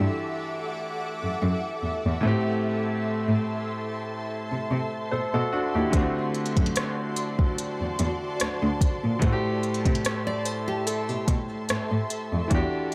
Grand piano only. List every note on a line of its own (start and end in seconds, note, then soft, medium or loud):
0.00 2.18 E3 medium
0.00 2.19 D4 medium
0.00 2.20 F#4 medium
0.00 2.21 G4 medium
2.21 5.47 A2 medium
2.21 5.48 A3 medium
2.25 5.49 C4 medium
2.25 5.09 G4 medium
5.11 5.33 A4 medium
5.11 5.32 C5 medium
5.34 5.51 F#4 medium
5.34 5.52 A4 medium
5.53 5.74 D4 medium
5.53 5.74 F#4 medium
5.75 6.14 E4 medium
5.75 6.14 G4 medium
5.90 9.17 D3 medium
5.90 9.18 A3 medium
5.95 9.19 C4 medium
5.95 9.20 F#4 medium
9.19 12.46 A2 medium
9.19 12.47 A3 medium
9.24 9.31 F#4 medium
9.24 12.48 C5 medium
9.33 12.52 G4 medium
12.48 12.95 E3 medium
12.48 12.95 D4 medium
12.52 12.95 F#4 medium
12.52 12.95 G4 medium